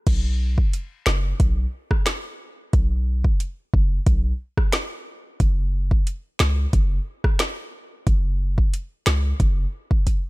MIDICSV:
0, 0, Header, 1, 3, 480
1, 0, Start_track
1, 0, Tempo, 666667
1, 48, Time_signature, 4, 2, 24, 8
1, 7414, End_track
2, 0, Start_track
2, 0, Title_t, "808-style bass"
2, 0, Program_c, 0, 38
2, 48, Note_on_c, 0, 35, 116
2, 432, Note_off_c, 0, 35, 0
2, 768, Note_on_c, 0, 30, 89
2, 960, Note_off_c, 0, 30, 0
2, 1007, Note_on_c, 0, 35, 107
2, 1199, Note_off_c, 0, 35, 0
2, 1968, Note_on_c, 0, 35, 108
2, 2352, Note_off_c, 0, 35, 0
2, 2690, Note_on_c, 0, 30, 91
2, 2881, Note_off_c, 0, 30, 0
2, 2927, Note_on_c, 0, 35, 108
2, 3119, Note_off_c, 0, 35, 0
2, 3888, Note_on_c, 0, 30, 109
2, 4272, Note_off_c, 0, 30, 0
2, 4608, Note_on_c, 0, 37, 95
2, 4800, Note_off_c, 0, 37, 0
2, 4847, Note_on_c, 0, 30, 102
2, 5039, Note_off_c, 0, 30, 0
2, 5809, Note_on_c, 0, 30, 106
2, 6192, Note_off_c, 0, 30, 0
2, 6528, Note_on_c, 0, 37, 101
2, 6720, Note_off_c, 0, 37, 0
2, 6767, Note_on_c, 0, 30, 111
2, 6959, Note_off_c, 0, 30, 0
2, 7414, End_track
3, 0, Start_track
3, 0, Title_t, "Drums"
3, 48, Note_on_c, 9, 36, 109
3, 48, Note_on_c, 9, 42, 67
3, 48, Note_on_c, 9, 49, 93
3, 120, Note_off_c, 9, 36, 0
3, 120, Note_off_c, 9, 42, 0
3, 120, Note_off_c, 9, 49, 0
3, 416, Note_on_c, 9, 36, 99
3, 488, Note_off_c, 9, 36, 0
3, 529, Note_on_c, 9, 42, 78
3, 601, Note_off_c, 9, 42, 0
3, 762, Note_on_c, 9, 26, 94
3, 767, Note_on_c, 9, 38, 121
3, 834, Note_off_c, 9, 26, 0
3, 839, Note_off_c, 9, 38, 0
3, 1006, Note_on_c, 9, 42, 86
3, 1007, Note_on_c, 9, 36, 94
3, 1078, Note_off_c, 9, 42, 0
3, 1079, Note_off_c, 9, 36, 0
3, 1373, Note_on_c, 9, 36, 98
3, 1374, Note_on_c, 9, 37, 96
3, 1445, Note_off_c, 9, 36, 0
3, 1446, Note_off_c, 9, 37, 0
3, 1481, Note_on_c, 9, 26, 92
3, 1486, Note_on_c, 9, 38, 116
3, 1488, Note_on_c, 9, 42, 75
3, 1553, Note_off_c, 9, 26, 0
3, 1558, Note_off_c, 9, 38, 0
3, 1560, Note_off_c, 9, 42, 0
3, 1968, Note_on_c, 9, 36, 115
3, 1968, Note_on_c, 9, 42, 69
3, 2040, Note_off_c, 9, 36, 0
3, 2040, Note_off_c, 9, 42, 0
3, 2336, Note_on_c, 9, 36, 100
3, 2408, Note_off_c, 9, 36, 0
3, 2449, Note_on_c, 9, 42, 81
3, 2521, Note_off_c, 9, 42, 0
3, 2690, Note_on_c, 9, 36, 96
3, 2762, Note_off_c, 9, 36, 0
3, 2927, Note_on_c, 9, 36, 91
3, 2927, Note_on_c, 9, 42, 80
3, 2999, Note_off_c, 9, 36, 0
3, 2999, Note_off_c, 9, 42, 0
3, 3294, Note_on_c, 9, 36, 92
3, 3295, Note_on_c, 9, 37, 91
3, 3366, Note_off_c, 9, 36, 0
3, 3367, Note_off_c, 9, 37, 0
3, 3402, Note_on_c, 9, 26, 90
3, 3407, Note_on_c, 9, 38, 117
3, 3408, Note_on_c, 9, 42, 71
3, 3474, Note_off_c, 9, 26, 0
3, 3479, Note_off_c, 9, 38, 0
3, 3480, Note_off_c, 9, 42, 0
3, 3888, Note_on_c, 9, 36, 111
3, 3888, Note_on_c, 9, 42, 70
3, 3960, Note_off_c, 9, 36, 0
3, 3960, Note_off_c, 9, 42, 0
3, 4256, Note_on_c, 9, 36, 101
3, 4328, Note_off_c, 9, 36, 0
3, 4369, Note_on_c, 9, 42, 77
3, 4441, Note_off_c, 9, 42, 0
3, 4603, Note_on_c, 9, 26, 94
3, 4607, Note_on_c, 9, 38, 121
3, 4675, Note_off_c, 9, 26, 0
3, 4679, Note_off_c, 9, 38, 0
3, 4847, Note_on_c, 9, 36, 93
3, 4847, Note_on_c, 9, 42, 80
3, 4919, Note_off_c, 9, 36, 0
3, 4919, Note_off_c, 9, 42, 0
3, 5214, Note_on_c, 9, 36, 95
3, 5215, Note_on_c, 9, 37, 97
3, 5286, Note_off_c, 9, 36, 0
3, 5287, Note_off_c, 9, 37, 0
3, 5322, Note_on_c, 9, 26, 94
3, 5327, Note_on_c, 9, 38, 115
3, 5328, Note_on_c, 9, 42, 77
3, 5394, Note_off_c, 9, 26, 0
3, 5399, Note_off_c, 9, 38, 0
3, 5400, Note_off_c, 9, 42, 0
3, 5808, Note_on_c, 9, 42, 68
3, 5809, Note_on_c, 9, 36, 118
3, 5880, Note_off_c, 9, 42, 0
3, 5881, Note_off_c, 9, 36, 0
3, 6177, Note_on_c, 9, 36, 96
3, 6249, Note_off_c, 9, 36, 0
3, 6289, Note_on_c, 9, 42, 79
3, 6361, Note_off_c, 9, 42, 0
3, 6523, Note_on_c, 9, 26, 94
3, 6528, Note_on_c, 9, 38, 124
3, 6595, Note_off_c, 9, 26, 0
3, 6600, Note_off_c, 9, 38, 0
3, 6767, Note_on_c, 9, 36, 94
3, 6767, Note_on_c, 9, 42, 78
3, 6839, Note_off_c, 9, 36, 0
3, 6839, Note_off_c, 9, 42, 0
3, 7134, Note_on_c, 9, 36, 99
3, 7206, Note_off_c, 9, 36, 0
3, 7248, Note_on_c, 9, 36, 62
3, 7248, Note_on_c, 9, 42, 72
3, 7320, Note_off_c, 9, 36, 0
3, 7320, Note_off_c, 9, 42, 0
3, 7414, End_track
0, 0, End_of_file